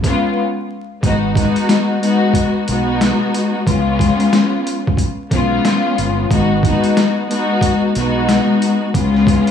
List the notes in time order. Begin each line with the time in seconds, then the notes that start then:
0.03 G#3 B3 C#4 F4, kick, closed hi-hat
1.01 G#1 G#3 B3 D#4 F#4, kick, closed hi-hat
1.35 G#3 B3 D#4 F#4, kick, closed hi-hat
1.56 closed hi-hat
1.69 snare, closed hi-hat
2.00 G#3 B3 D#4 F#4, closed hi-hat
2.33 kick, closed hi-hat
2.68 B1 G#3 B3 D#4 F#4, closed hi-hat
3.01 snare, closed hi-hat
3.34 closed hi-hat
3.65 C#2 G#3 B3 C#4 F4, kick, closed hi-hat
3.99 kick, closed hi-hat
4.20 closed hi-hat
4.33 snare, closed hi-hat
4.67 closed hi-hat
4.87 kick
4.97 kick, closed hi-hat
5.30 B1 G#3 B3 C#4 F4, kick, closed hi-hat
5.65 snare, closed hi-hat
5.98 G1, closed hi-hat
6.29 G#1 G#3 B3 D#4 F#4, kick, closed hi-hat
6.63 G#3 B3 D#4 F#4, kick, closed hi-hat
6.84 closed hi-hat
6.97 snare, closed hi-hat
7.27 G#3 B3 D#4 F#4, closed hi-hat
7.61 kick, closed hi-hat
7.95 B1 G#3 B3 D#4 F#4, closed hi-hat
8.29 snare, closed hi-hat
8.62 closed hi-hat
8.93 C#2 G#3 B3 C#4 F4, kick, closed hi-hat
9.14 snare
9.27 kick, closed hi-hat
9.47 closed hi-hat